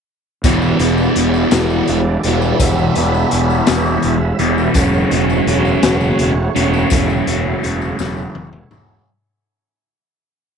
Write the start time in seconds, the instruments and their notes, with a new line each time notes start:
0.44 fingered electric bass E1, distorted electric guitar E2 B2 E3, tonewheel organ G3 E4 D5, kick, closed hi-hat, tambourine
0.62 tambourine
0.79 fingered electric bass E1, distorted electric guitar E2 B2 E3, closed hi-hat
0.98 tambourine
1.16 fingered electric bass E1, distorted electric guitar E2 B2 E3, closed hi-hat
1.34 tambourine
1.51 fingered electric bass E1, distorted electric guitar E2 B2 E3, snare, closed hi-hat, tambourine
1.70 tambourine
1.87 fingered electric bass E1, closed hi-hat
2.23 fingered electric bass E1, distorted electric guitar E2 B2 E3, closed hi-hat
2.42 tambourine
2.60 fingered electric bass E1, distorted electric guitar E2 B2 E3, tonewheel organ E5, kick, closed hi-hat, tambourine
2.79 tambourine
2.95 fingered electric bass E1, distorted electric guitar E2 B2 E3, closed hi-hat
3.14 tambourine
3.31 fingered electric bass E1, distorted electric guitar E2 B2 E3, closed hi-hat
3.50 tambourine
3.66 fingered electric bass E1, distorted electric guitar E2 B2 E3, snare, closed hi-hat, tambourine
3.86 tambourine
4.02 fingered electric bass E1, closed hi-hat
4.39 fingered electric bass E1, distorted electric guitar E2 B2 E3, closed hi-hat
4.58 tambourine
4.74 fingered electric bass E1, distorted electric guitar F#2 C#3 F#3, tonewheel organ A3 F#4 C#5, kick, closed hi-hat, tambourine
4.93 tambourine
5.11 fingered electric bass E1, distorted electric guitar F#2 C#3 F#3, closed hi-hat
5.30 tambourine
5.46 fingered electric bass E1, distorted electric guitar F#2 C#3 F#3, closed hi-hat
5.65 tambourine
5.83 fingered electric bass E1, distorted electric guitar F#2 C#3 F#3, snare, closed hi-hat, tambourine
6.01 tambourine
6.19 fingered electric bass E1, closed hi-hat
6.55 fingered electric bass E1, distorted electric guitar F#2 C#3 F#3, closed hi-hat
6.73 tambourine
6.90 fingered electric bass E1, distorted electric guitar F#2 C#3 F#3, tonewheel organ E4, kick, closed hi-hat, tambourine
7.09 tambourine
7.27 fingered electric bass E1, distorted electric guitar F#2 C#3 F#3, closed hi-hat
7.63 fingered electric bass E1, distorted electric guitar F#2 C#3 F#3, closed hi-hat, tambourine
7.81 tambourine
7.99 fingered electric bass E1, distorted electric guitar F#2 C#3 F#3, snare, tambourine
8.17 tambourine
8.35 fingered electric bass E1, high tom
8.53 mid tom
8.71 fingered electric bass E1, distorted electric guitar F#2 C#3 F#3, mid tom, tambourine